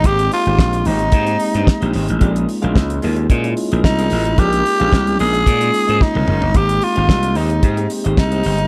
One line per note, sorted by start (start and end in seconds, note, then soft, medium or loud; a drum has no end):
0.00 0.03 G#3 medium
0.00 0.36 G#3 medium
0.00 0.04 A#3 medium
0.00 0.36 A#3 medium
0.00 0.04 C4 medium
0.00 0.05 D#4 medium
0.00 0.05 G4 medium
0.04 0.28 G#1 loud
0.04 0.36 C4 medium
0.04 0.30 D#4 medium
0.04 0.36 D#4 medium
0.04 0.36 G4 medium
0.04 0.30 G4 medium
0.04 0.33 G4 loud
0.04 0.30 C5 medium
0.04 0.31 D#5 medium
0.04 kick loud
0.04 closed hi-hat medium
0.19 closed hi-hat soft
0.32 0.88 F4 medium
0.32 muted clean electric guitar stroke soft
0.32 open hi-hat medium
0.46 0.59 G#1 medium
0.46 1.08 G#3 medium
0.46 1.08 A#3 medium
0.46 1.08 C4 medium
0.46 1.09 D#4 medium
0.46 0.58 D#4 soft
0.46 1.09 G4 medium
0.46 0.58 G4 soft
0.46 0.58 C5 medium
0.46 0.58 F5 medium
0.46 closed hi-hat soft
0.59 0.82 A#1 medium
0.59 kick loud
0.59 snare loud
0.73 muted clean electric guitar stroke soft
0.73 closed hi-hat soft
0.85 1.09 G#1 medium
0.85 1.02 D#4 medium
0.85 1.95 D#4 medium
0.85 1.01 G4 medium
0.85 1.00 C5 medium
0.85 1.00 D#5 medium
0.85 open hi-hat medium
0.99 muted clean electric guitar stroke soft
0.99 closed hi-hat soft
1.12 1.36 G#2 medium
1.12 1.29 D#4 medium
1.12 1.28 G4 medium
1.12 1.27 C5 medium
1.12 1.27 D#5 medium
1.12 kick loud
1.12 closed hi-hat medium
1.26 1.99 G#3 medium
1.26 2.00 A#3 medium
1.26 2.00 C4 medium
1.26 2.00 D#4 medium
1.26 2.00 G4 medium
1.26 muted clean electric guitar stroke soft
1.26 closed hi-hat soft
1.40 muted clean electric guitar stroke soft
1.40 open hi-hat medium
1.54 1.65 G2 medium
1.54 1.66 D#4 medium
1.54 1.66 G4 soft
1.54 1.66 C5 medium
1.54 1.66 D#5 medium
1.54 closed hi-hat soft
1.67 muted clean electric guitar stroke soft
1.67 kick loud
1.67 snare loud
1.81 1.93 A#1 medium
1.81 1.93 D#4 medium
1.81 1.93 G4 medium
1.81 1.93 C5 medium
1.81 1.93 D#5 medium
1.81 closed hi-hat soft
1.93 2.07 G#1 medium
1.93 2.10 D#4 medium
1.93 2.08 G4 medium
1.93 2.08 C5 medium
1.93 2.07 D#5 loud
1.93 open hi-hat medium
2.08 2.20 A1 medium
2.08 muted clean electric guitar stroke soft
2.08 closed hi-hat soft
2.20 2.44 A#1 loud
2.20 2.52 G#3 medium
2.20 2.53 A#3 medium
2.20 2.32 C4 medium
2.20 2.53 C#4 medium
2.20 2.53 D#4 medium
2.20 2.53 F4 medium
2.20 2.32 G4 medium
2.20 2.47 A#4 medium
2.20 2.47 D#5 medium
2.20 kick loud
2.20 closed hi-hat medium
2.32 2.46 C#4 medium
2.32 2.46 G#4 medium
2.36 closed hi-hat medium
2.48 muted clean electric guitar stroke soft
2.48 open hi-hat medium
2.62 2.74 A#1 medium
2.62 3.24 G#3 loud
2.62 3.25 A#3 medium
2.62 3.25 C#4 medium
2.62 2.74 C#4 soft
2.62 3.25 D#4 medium
2.62 2.69 E4 medium
2.62 2.74 G#4 medium
2.62 2.74 A#4 medium
2.62 2.74 F5 medium
2.62 closed hi-hat soft
2.70 3.28 F4 medium
2.75 2.99 C#2 loud
2.75 muted clean electric guitar stroke soft
2.75 kick loud
2.75 snare loud
2.89 muted clean electric guitar stroke medium
2.89 closed hi-hat soft
3.02 3.26 D#2 medium
3.02 3.19 C#4 medium
3.02 3.17 G#4 medium
3.02 3.17 A#4 medium
3.02 3.16 D#5 medium
3.02 open hi-hat medium
3.17 muted clean electric guitar stroke soft
3.17 closed hi-hat soft
3.30 3.53 A#2 loud
3.30 3.46 C#4 medium
3.30 3.44 G#4 medium
3.30 3.43 A#4 medium
3.30 3.43 D#5 medium
3.30 kick loud
3.30 closed hi-hat medium
3.43 4.16 G#3 medium
3.43 4.16 A#3 medium
3.43 4.17 C#4 medium
3.43 4.17 D#4 medium
3.43 3.50 E4 medium
3.43 muted clean electric guitar stroke medium
3.43 closed hi-hat soft
3.51 4.20 F4 medium
3.57 muted clean electric guitar stroke soft
3.57 open hi-hat medium
3.72 3.83 A#1 medium
3.72 3.83 C#4 medium
3.72 3.83 G#4 medium
3.72 3.83 A#4 medium
3.72 3.83 D#5 medium
3.72 closed hi-hat soft
3.84 4.07 C2 medium
3.84 4.40 D#4 medium
3.84 kick loud
3.84 snare loud
3.99 4.10 C#4 medium
3.99 4.10 G#4 medium
3.99 4.11 A#4 medium
3.99 4.11 D#5 medium
3.99 closed hi-hat soft
4.10 4.35 A1 medium
4.10 4.24 C#4 medium
4.10 4.24 G#4 medium
4.10 4.24 A#4 medium
4.10 4.24 D#5 medium
4.10 open hi-hat medium
4.25 muted clean electric guitar stroke soft
4.25 closed hi-hat soft
4.38 4.61 A#1 medium
4.38 4.69 G#3 medium
4.38 4.69 A#3 medium
4.38 4.63 C#4 medium
4.38 4.70 C#4 medium
4.38 4.70 D#4 medium
4.38 5.19 G4 loud
4.38 4.63 G#4 medium
4.38 4.70 A#4 medium
4.38 4.64 A#4 medium
4.38 4.64 D#5 medium
4.38 kick loud
4.38 closed hi-hat medium
4.53 closed hi-hat medium
4.65 muted clean electric guitar stroke soft
4.65 open hi-hat medium
4.79 4.91 A#1 medium
4.79 5.41 G#3 medium
4.79 5.41 A#3 medium
4.79 5.42 C#4 medium
4.79 4.91 C#4 medium
4.79 5.42 D#4 medium
4.79 5.42 F4 medium
4.79 4.91 G#4 soft
4.79 4.91 A#4 medium
4.79 4.91 F5 medium
4.79 closed hi-hat soft
4.92 5.16 C2 medium
4.92 muted clean electric guitar stroke soft
4.92 kick loud
4.92 snare loud
5.06 muted clean electric guitar stroke medium
5.06 closed hi-hat soft
5.19 5.43 A#1 loud
5.19 5.35 C#4 medium
5.19 6.04 G#4 loud
5.19 5.34 G#4 medium
5.19 5.33 A#4 medium
5.19 5.33 D#5 medium
5.19 open hi-hat medium
5.34 muted clean electric guitar stroke soft
5.34 closed hi-hat soft
5.46 5.70 A#2 loud
5.46 5.62 C#4 medium
5.46 5.61 G#4 medium
5.46 5.60 A#4 medium
5.46 5.59 D#5 medium
5.46 kick medium
5.46 closed hi-hat medium
5.60 6.33 G#3 medium
5.60 6.33 A#3 medium
5.60 6.33 C#4 medium
5.60 6.33 D#4 medium
5.60 6.34 F4 medium
5.60 muted clean electric guitar stroke soft
5.60 closed hi-hat soft
5.73 muted clean electric guitar stroke soft
5.73 open hi-hat medium
5.87 5.99 G#2 medium
5.87 5.99 C#4 medium
5.87 5.99 G#4 medium
5.87 5.99 A#4 medium
5.87 5.99 D#5 medium
5.87 closed hi-hat soft
6.00 6.58 D#4 medium
6.00 muted clean electric guitar stroke soft
6.00 kick loud
6.00 snare medium
6.14 6.26 C2 medium
6.14 6.26 C#4 medium
6.14 6.27 G#4 medium
6.14 6.26 A#4 medium
6.14 6.26 D#5 medium
6.14 high tom medium
6.27 6.43 F#1 medium
6.27 6.44 C#4 medium
6.27 6.42 G#4 medium
6.27 6.41 A#4 medium
6.27 6.41 D#5 medium
6.27 mid tom medium
6.42 6.53 G1 medium
6.42 muted clean electric guitar stroke soft
6.42 floor tom medium
6.54 6.78 G#1 medium
6.54 6.86 G#3 medium
6.54 6.86 A#3 medium
6.54 6.87 C4 medium
6.54 6.80 D#4 medium
6.54 6.87 D#4 medium
6.54 6.80 G4 medium
6.54 6.87 G4 medium
6.54 6.85 G4 medium
6.54 6.80 C5 medium
6.54 6.81 D#5 medium
6.54 kick medium
6.54 closed hi-hat medium
6.69 closed hi-hat medium
6.82 7.38 F4 medium
6.82 muted clean electric guitar stroke soft
6.82 open hi-hat medium
6.95 7.08 G#1 medium
6.95 7.58 G#3 medium
6.95 7.58 A#3 medium
6.95 7.58 C4 medium
6.95 7.59 D#4 medium
6.95 7.07 D#4 soft
6.95 7.59 G4 medium
6.95 7.08 G4 soft
6.95 7.08 C5 medium
6.95 7.07 F5 medium
6.95 closed hi-hat soft
7.08 7.37 C2 medium
7.08 muted clean electric guitar stroke soft
7.08 kick loud
7.08 snare loud
7.23 muted clean electric guitar stroke soft
7.23 closed hi-hat soft
7.35 7.60 D#2 medium
7.35 7.52 D#4 medium
7.35 7.90 D#4 medium
7.35 7.50 G4 medium
7.35 7.50 C5 medium
7.35 7.49 D#5 medium
7.35 open hi-hat medium
7.50 muted clean electric guitar stroke soft
7.50 closed hi-hat soft
7.63 7.86 G#2 loud
7.63 7.79 D#4 medium
7.63 7.78 G4 medium
7.63 7.77 C5 medium
7.63 7.76 D#5 medium
7.63 kick loud
7.63 closed hi-hat medium
7.77 8.50 G#3 medium
7.77 8.50 A#3 medium
7.77 8.50 C4 medium
7.77 8.51 D#4 medium
7.77 8.51 G4 medium
7.77 muted clean electric guitar stroke soft
7.77 closed hi-hat soft
7.90 muted clean electric guitar stroke soft
7.90 open hi-hat medium
8.04 8.16 G#1 medium
8.04 8.16 D#4 medium
8.04 8.16 G4 medium
8.04 8.16 C5 medium
8.04 8.16 D#5 medium
8.04 closed hi-hat soft
8.17 8.41 C2 medium
8.17 8.68 D#4 medium
8.17 muted clean electric guitar stroke soft
8.17 kick loud
8.17 snare loud
8.31 8.43 D#4 medium
8.31 8.43 G4 medium
8.31 8.43 C5 medium
8.31 8.43 D#5 medium
8.31 closed hi-hat soft
8.43 8.68 G1 medium
8.43 8.60 D#4 medium
8.43 8.59 G4 medium
8.43 8.58 C5 medium
8.43 8.57 D#5 loud
8.43 open hi-hat medium
8.58 muted clean electric guitar stroke soft
8.58 closed hi-hat soft